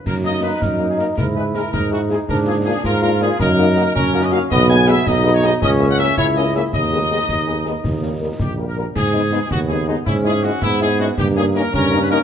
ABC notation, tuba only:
X:1
M:6/8
L:1/8
Q:3/8=108
K:Ebm
V:1 name="Tuba" clef=bass
G,,3 G,,3 | ^G,,3 G,,3 | A,,3 A,,3 | G,,3 G,,3 |
[K:G#m] B,,,3 B,,,3 | C,,3 C,,3 | D,,3 D,,3 | D,,3 A,,,3 |
G,,3 D,,3 | G,,3 G,,3 | =G,,3 G,,3 |]